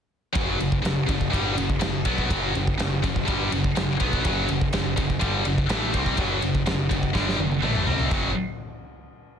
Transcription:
0.33 F#1 F#2 C#3 F#3, kick, ride
0.58 F#1 F#2 C#3, ride
0.72 kick
0.82 F#1 F#2 C#3, ride
0.86 snare
1.07 F#1 F#2 C#3, kick, ride
1.21 kick
1.30 G1 G2 D3 G3, kick, ride
1.55 F#1 F#2 C#3, ride
1.70 kick
1.80 F#1 F#2 C#3, snare, ride
2.05 B1 B2 F#3 B3, kick, ride
2.18 kick
2.29 F#1 F#2 C#3 F#3, kick, ride
2.54 F#1 F#2 C#3, ride
2.67 kick
2.78 F#1 F#2 C#3, snare, ride
3.02 F#1 F#2 C#3, kick, ride
3.16 kick
3.25 G1 G2 D3 G3, kick, ride
3.50 F#1 F#2 C#3, ride
3.64 kick
3.75 F#1 F#2 C#3, snare, ride
4.00 B1 B2 F#3 B3, kick, ride
4.13 kick
4.23 F#1 F#2 C#3 F#3, kick, ride
4.47 F#1 F#2 C#3, ride
4.61 kick
4.73 F#1 F#2 C#3, snare, ride
4.96 F#1 F#2 C#3, kick, ride
5.10 kick
5.20 G1 G2 D3 G3, kick, ride
5.45 F#1 F#2 C#3, ride
5.58 kick
5.69 A1 A2 E3 A3, snare, ride
5.93 C2 C3 G3 C4, kick, ride
6.06 kick
6.17 F#1 F#2 C#3 F#3, kick, ride
6.42 F#1 F#2 C#3, ride
6.55 kick
6.66 F#1 F#2 C#3, snare, ride
6.89 F#1 F#2 C#3, kick, ride
7.03 kick
7.13 G1 G2 D3 G3, kick, snare
7.29 snare
7.38 F#1 F#2 C#3, high tom
7.52 high tom
7.62 A1 A2 E3 A3, mid tom
7.75 mid tom
7.85 C2 C3 G3 C4, floor tom
7.99 floor tom
8.09 F#1 F#2 C#3 F#3, kick, crash

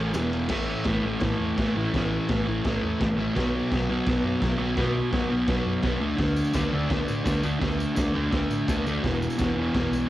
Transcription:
Already playing: A1 A2 E3 A3
0.13 E1 E2 B2 E3, snare, ride, tambourine
0.33 ride
0.49 A1 A2 E3 A3, kick, snare, crash
0.84 A1 A2 E3 A3, kick, snare, crash
1.03 A1 A2 E3 A3
1.20 A1 A2 E3 A3, kick, snare, crash
1.40 E2
1.57 A1 A2 E3 A3, kick, snare, crash
1.75 A1 A2 E3 A3
1.93 A1 A2 E3 A3, kick, snare, crash
2.28 A1 A2 E3 A3, kick, snare, crash
2.47 A1 A2 E3 A3
2.64 A1 A2 E3 A3, kick, snare, crash
2.83 E2
3.00 A1 A2 E3 A3, kick, snare, crash
3.17 A1 A2 E3 A3
3.35 B1 B2 F#3 B3, kick, snare, crash
3.72 B1 B2 F#3 B3, kick, snare, crash
3.88 B1 B2 F#3 B3
4.06 B1 B2 F#3 B3, kick, snare, crash
4.23 F#2
4.41 B1 B2 F#3 B3, kick, snare, crash
4.59 B1 B2 F#3 B3
4.76 B1 B2 F#3 B3, kick, snare, crash
5.11 B1 B2 F#3 B3, kick, snare, crash
5.29 B1 B2 F#3 B3
5.47 B1 B2 F#3 B3, kick, snare, crash
5.65 F#2
5.82 B1 B2 F#3 B3, kick, snare, crash
5.99 D2 D3 A3 D4
6.17 D2 D3 A3 D4, kick, snare, crash
6.28 tambourine
6.37 tambourine
6.45 tambourine
6.53 D2 D3 A3 D4, kick, snare, tambourine, crash
6.72 D2 D3 A3 D4
6.90 D2 D3 A3 D4, kick, snare, tambourine, crash
7.08 A2, tambourine
7.25 D2 D3 A3 D4, kick, snare, tambourine, crash
7.42 D2 D3 A3 D4, tambourine
7.59 D2 D3 A3 D4, kick, snare, crash
7.71 tambourine
7.80 tambourine
7.95 D2 D3 A3 D4, kick, snare, tambourine, crash
8.13 D2 D3 A3 D4
8.31 D2 D3 A3 D4, kick, snare, tambourine, crash
8.50 A2, tambourine
8.67 D2 D3 A3 D4, kick, snare, tambourine, crash
8.85 D2 D3 A3 D4, tambourine
9.03 E1 E2 B2 E3, kick, snare, crash
9.13 tambourine
9.22 tambourine
9.30 tambourine
9.37 E1 E2 B2 E3, kick, tambourine, crash
9.41 snare
9.56 E1 E2 B2 E3
9.74 E1 E2 B2 E3, kick, snare, tambourine, crash
9.91 B1, tambourine

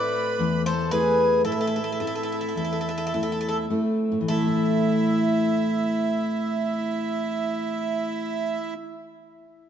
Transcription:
Already playing: A2 A3 C4 E4 B4 D5
0.39 E2
0.66 A4 C5
0.91 A3 C4 E4 G#4 B4
1.45 A2 E4 A4
1.52 A4
1.61 A4
1.67 A4
1.76 A4
1.84 A4
1.92 A4
2.00 A3 C4 E4 A4
2.07 A4
2.15 A4
2.23 A4
2.32 A4
2.41 A4
2.48 A4
2.55 E2 A4
2.64 A4
2.73 A4
2.81 A4
2.89 A4
2.98 A4
3.07 A4
3.13 A3 C4 E4 A4
3.23 A4
3.32 A4
3.41 A4
3.49 A4
3.70 A3 C4 E4
4.12 A2
4.21 E3
4.28 A3 E4 A4
4.38 C4
4.47 E4

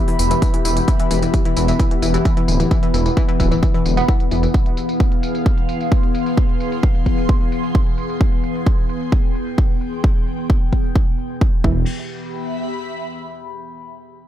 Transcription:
Already playing: E3 B3 G4 E5 B5
0.08 E3, open hi-hat
0.19 E1 E3, open hi-hat, tambourine
0.31 E3, closed hi-hat, tambourine
0.42 E3, kick, closed hi-hat, tambourine
0.54 E3, closed hi-hat
0.65 E1 E3, open hi-hat, tambourine
0.77 E3, closed hi-hat, tambourine
0.88 E3, kick, closed hi-hat, tambourine
1.00 E3, closed hi-hat
1.11 E1 E3, open hi-hat, tambourine
1.22 E3, closed hi-hat, tambourine
1.34 E3, kick, closed hi-hat, tambourine
1.45 E3, closed hi-hat
1.57 E1 E3, open hi-hat, tambourine
1.68 E3, closed hi-hat, tambourine
1.80 E3, kick, closed hi-hat, tambourine
1.91 E3, closed hi-hat
2.02 E1 E3, open hi-hat, tambourine
2.14 E3, closed hi-hat, tambourine
2.25 E3, kick, closed hi-hat, tambourine
2.37 E3, closed hi-hat
2.48 D1 E3, open hi-hat, tambourine
2.60 E3, closed hi-hat, tambourine
2.71 E3, kick, closed hi-hat, tambourine
2.83 E3, closed hi-hat
2.94 E1 E3, open hi-hat, tambourine
3.06 E3, closed hi-hat, tambourine
3.17 E3, kick, closed hi-hat, tambourine
3.29 E3, closed hi-hat
3.40 D1 E3, kick, open hi-hat, tambourine
3.52 E3, closed hi-hat, tambourine
3.63 E3, kick, closed hi-hat, tambourine
3.74 E3, open hi-hat
3.86 E1 D3, open hi-hat, tambourine
3.97 B3, closed hi-hat, tambourine
4.09 E3, kick, closed hi-hat, tambourine
4.20 closed hi-hat
4.31 E1 E3, open hi-hat, tambourine
4.43 E3, closed hi-hat, tambourine
4.54 kick, closed hi-hat, tambourine
4.66 G#4 F5, closed hi-hat
4.77 open hi-hat, tambourine
4.89 closed hi-hat, tambourine
5.00 kick, closed hi-hat, tambourine
5.12 closed hi-hat
5.23 open hi-hat, tambourine
5.35 C6, closed hi-hat, tambourine
5.46 kick, closed hi-hat, tambourine
5.58 closed hi-hat
5.69 open hi-hat, tambourine
5.81 closed hi-hat, tambourine
5.92 kick, closed hi-hat, tambourine
6.03 closed hi-hat
6.15 open hi-hat, tambourine
6.26 closed hi-hat, tambourine
6.37 kick, closed hi-hat, tambourine
6.49 closed hi-hat
6.60 open hi-hat, tambourine
6.72 closed hi-hat, tambourine
6.83 kick, closed hi-hat, tambourine
6.95 closed hi-hat
7.06 kick, open hi-hat, tambourine
7.18 closed hi-hat, tambourine
7.29 kick, closed hi-hat, tambourine
7.41 open hi-hat
7.52 open hi-hat, tambourine
7.64 closed hi-hat, tambourine
7.75 kick, closed hi-hat, tambourine
7.87 closed hi-hat
7.98 open hi-hat, tambourine
8.10 closed hi-hat, tambourine
8.21 kick, tambourine
8.32 closed hi-hat
8.44 open hi-hat, tambourine
8.55 closed hi-hat, tambourine
8.66 kick, closed hi-hat
8.78 closed hi-hat
8.89 open hi-hat, tambourine
8.95 G5
9.01 closed hi-hat, tambourine
9.12 kick, closed hi-hat, tambourine
9.24 closed hi-hat
9.35 open hi-hat, tambourine
9.47 closed hi-hat, tambourine
9.58 kick
9.70 closed hi-hat
9.81 open hi-hat, tambourine
9.93 closed hi-hat, tambourine
10.04 kick
10.16 closed hi-hat
10.27 open hi-hat, tambourine
10.39 closed hi-hat, tambourine
10.50 kick
10.62 closed hi-hat
10.73 kick, open hi-hat, tambourine
10.84 closed hi-hat, tambourine
10.96 kick
11.07 open hi-hat
11.18 open hi-hat, tambourine
11.30 closed hi-hat, tambourine
11.41 kick
11.53 closed hi-hat
11.64 E1 E3 B3, kick, crash
11.71 G4
12.01 E5
12.08 B5

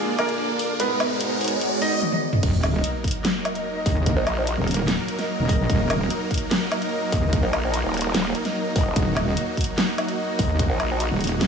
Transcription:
Already playing: G#3 A#3 D4 F4 G#4 A#4 D5 F5, riser
0.18 A#3 A#4, closed hi-hat, low woodblock
0.29 closed hi-hat
0.59 open hi-hat
0.80 G#3 B3 D#4 A#4 B4, closed hi-hat
0.87 B3 F#4
1.00 closed hi-hat, low woodblock
1.21 closed hi-hat
1.31 D#5
1.41 closed hi-hat, open hi-hat
1.48 closed hi-hat
1.61 closed hi-hat
1.82 D#4 D#5, closed hi-hat
1.92 closed hi-hat
2.02 high tom
2.12 high tom
2.33 mid tom
2.43 D#1 F#3 A#3 D#4 A#4, kick, closed hi-hat, crash, sub drop
2.63 closed hi-hat, low woodblock
2.74 D#4 A#4 D#5
2.84 closed hi-hat
3.04 kick, closed hi-hat
3.08 closed hi-hat
3.11 closed hi-hat
3.25 snare, clap, closed hi-hat
3.45 closed hi-hat, low woodblock
3.55 D#4 A#4 D#5, closed hi-hat
3.86 D#2, kick, open hi-hat
4.06 kick, closed hi-hat
4.16 A#1
4.27 closed hi-hat, low woodblock
4.37 D#4 A#4 D#5
4.47 closed hi-hat
4.57 D#1
4.68 closed hi-hat
4.71 closed hi-hat
4.74 closed hi-hat
4.88 snare, clap, closed hi-hat
5.08 closed hi-hat
5.19 D#4 A#4 D#5, snare, closed hi-hat
5.39 D#1
5.49 kick, open hi-hat
5.59 A#1
5.70 D#1, kick, closed hi-hat
5.90 closed hi-hat, low woodblock
6.00 D#4 A#4 D#5
6.10 closed hi-hat
6.31 kick, closed hi-hat
6.34 closed hi-hat
6.38 closed hi-hat
6.51 snare, clap, closed hi-hat
6.72 closed hi-hat, low woodblock
6.82 D#4 A#4 D#5, closed hi-hat
7.12 D#2, kick, open hi-hat
7.33 kick, closed hi-hat
7.43 A#1
7.53 closed hi-hat, low woodblock
7.63 D#4 A#4 D#5
7.74 closed hi-hat
7.84 D#1
7.94 closed hi-hat
7.97 closed hi-hat
8.01 closed hi-hat
8.14 D#1, snare, clap, closed hi-hat
8.35 closed hi-hat
8.45 D#4 A#4 D#5, snare, closed hi-hat
8.76 D#1, kick, open hi-hat
8.86 D#1
8.96 D#1 F#4, kick, closed hi-hat
9.17 closed hi-hat, low woodblock
9.27 D#4 A#4 D#5
9.37 closed hi-hat
9.57 kick, closed hi-hat
9.61 closed hi-hat
9.64 closed hi-hat
9.78 snare, clap, closed hi-hat
9.98 closed hi-hat, low woodblock
10.08 D#4 A#4 D#5, closed hi-hat
10.39 D#2, kick, open hi-hat
10.59 kick, closed hi-hat
10.70 A#1
10.80 closed hi-hat, low woodblock
10.90 D#4 A#4 D#5
11.00 closed hi-hat
11.10 D#1
11.21 closed hi-hat
11.24 closed hi-hat
11.27 closed hi-hat
11.41 snare, clap, closed hi-hat

